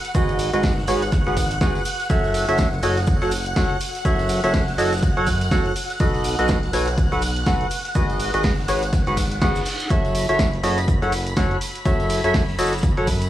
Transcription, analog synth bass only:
0.15 0.51 G#1 medium
0.53 0.86 G#1 loud
0.88 1.24 G#1 loud
1.27 1.59 G#1 medium
1.61 1.79 G#1 medium
2.10 2.46 F#1 medium
2.49 2.81 F#1 loud
2.83 3.19 F#1 loud
3.22 3.54 F#1 medium
3.56 3.75 F#1 loud
4.05 4.41 F#1 medium
4.44 4.76 F#1 loud
4.78 5.14 F#1 medium
5.17 5.49 F#2 medium
5.51 5.70 F#1 loud
6.00 6.36 B1 medium
6.39 6.71 B1 loud
6.73 7.09 B1 loud
7.12 7.44 B1 loud
7.46 7.65 B1 loud
7.95 8.31 G#1 medium
8.34 8.66 G#1 loud
8.68 9.04 G#1 loud
9.07 9.40 G#1 medium
9.42 9.60 G#1 medium
9.90 10.26 F#1 medium
10.29 10.62 F#1 loud
10.64 10.99 F#1 loud
11.02 11.35 F#1 loud
11.37 11.55 F#1 loud
11.85 12.21 F#1 medium
12.24 12.57 F#1 loud
12.59 12.94 F#1 loud
12.97 13.30 F#2 medium

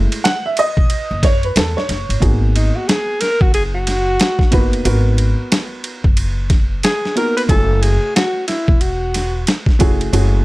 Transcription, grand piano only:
0.00 0.37 G#3 medium
0.00 0.37 A3 soft
0.00 0.38 E4 medium
0.24 0.45 F#5 loud
0.46 0.57 E5 loud
0.59 1.20 D#5 loud
1.24 1.45 C#5 loud
1.44 1.57 B4 medium
1.57 1.77 A4 medium
1.77 2.19 C#5 medium
2.20 3.38 A#3 medium
2.20 3.39 B3 medium
2.20 3.39 D#4 medium
2.20 3.39 F#4 medium
2.20 3.39 G#4 medium
4.51 4.81 A#3 medium
4.51 4.82 B3 medium
4.51 4.82 D#4 medium
4.51 4.82 F#4 medium
4.51 4.82 B4 loud
4.84 6.03 B3 medium
4.84 6.03 D#4 medium
4.84 6.03 F#4 medium
4.84 6.02 A#4 medium
4.84 6.03 B4 medium
7.16 7.45 A#3 medium
7.16 7.45 B3 medium
7.16 7.46 D#4 medium
7.16 7.46 F#4 medium
7.16 7.46 A#4 medium
7.49 7.57 G#3 medium
7.49 8.67 C#4 medium
7.49 8.67 E4 medium
7.49 8.67 F#4 medium
7.49 8.67 G#5 medium
7.56 8.70 A3 medium
9.79 10.09 A3 medium
9.79 10.09 C#4 medium
9.79 10.09 E4 medium
9.79 10.10 F#4 medium
9.79 10.10 G#4 medium
10.12 10.45 A3 medium
10.12 10.45 C#4 medium
10.12 10.45 E4 medium
10.12 10.45 F#4 medium
10.12 10.45 G#4 loud

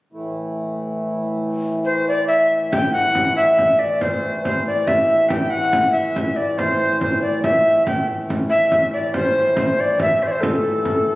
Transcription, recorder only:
1.85 2.06 C5 medium
2.08 2.27 D5 medium
2.28 2.69 E5 medium
2.72 2.92 G5 medium
2.93 3.33 F#5 loud
3.36 3.81 E5 medium
3.79 4.03 D5 medium
4.02 4.44 C5 medium
4.44 4.64 C5 medium
4.67 4.89 D5 medium
4.87 5.30 E5 medium
5.29 5.52 G5 medium
5.50 5.91 F#5 loud
5.92 6.38 E5 medium
6.36 6.60 D5 medium
6.58 7.01 C5 medium
7.01 7.21 C5 medium
7.22 7.42 D5 medium
7.43 7.84 E5 medium
7.86 8.07 G5 medium
8.50 8.90 E5 medium
8.93 9.13 D5 medium
9.15 9.55 C5 medium
9.58 9.82 C5 medium
9.80 10.01 D5 medium
10.02 10.24 E5 medium
10.23 10.29 C5 medium
10.27 10.33 D5 medium
10.31 10.42 C5 medium
10.41 11.15 A4 medium

